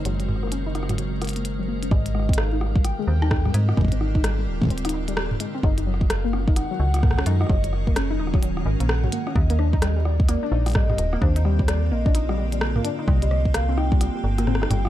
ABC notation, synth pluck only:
X:1
M:4/4
L:1/16
Q:"Swing 16ths" 1/4=129
K:Ablyd
V:1 name="Synth pluck"
_G, G, z B, _D E E G, G, z B B, z G, B, D | G, z A, C E E G, G, z A, C E E G, G, z | A, C E E G, G, z A, C E E G, G, z A, C | E E _G, G, z B, _D E E G, G, z B, D E E |
_G, G, z B, _D E E G, G, z B B, z G, B, D | z B, D E G, G, G, z B, D E G, G, G, z B, | D E G, G, G, z B, D E G, G, G, z B, D E | G, G, G, z B, C E G, G, G, z B, C E G, G, |]